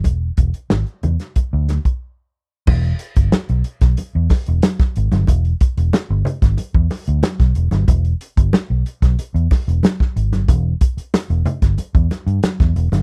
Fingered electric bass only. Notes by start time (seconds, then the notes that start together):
0.05 E1
0.38 E1
0.71 G#1
1.04 E2
1.36 muted fingered electric bass stroke
1.53 D2
2.68 E1
3.17 G1
3.49 B1
3.82 B1
3.99 muted fingered electric bass stroke
4.15 E2
4.48 E1
4.97 G#1
5.13 G1
5.28 E1
5.77 E1
6.10 G1
6.42 G#1
6.59 muted fingered electric bass stroke
6.75 E2
7.08 D2
7.40 B1
7.56 E1
7.72 G1
7.88 E1
8.38 G1
8.70 B1
9.02 B1
9.19 muted fingered electric bass stroke
9.34 E2
9.68 E1
10.16 G#1
10.32 G1
10.49 E1
10.97 muted fingered electric bass stroke
11.30 E1
11.63 G1
11.79 muted fingered electric bass stroke
11.95 E2
12.27 G2
12.60 E2
12.76 E1
12.92 G1